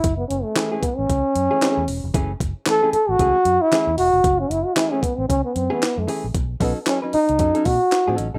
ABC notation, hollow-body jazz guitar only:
X:1
M:4/4
L:1/16
Q:"Swing 16ths" 1/4=114
K:F#dor
V:1 name="Hollow-body jazz guitar"
z4 [E,A,CG] [E,A,CG] z4 z [E,A,CG] [E,A,CG]2 z2 | [E,A,CG] z3 [E,A,CA] [E,A,CG] z2 [E,A,CG] z3 [E,A,CG] z3 | z4 [E,A,CG] [E,A,CG] z4 z [E,A,CG] z2 [E,A,CG] z | z2 [F,CDA] z [F,CDA] [F,CDB] z2 [F,CDA] [F,CDA] z3 [F,CDA]2 [CDA] |]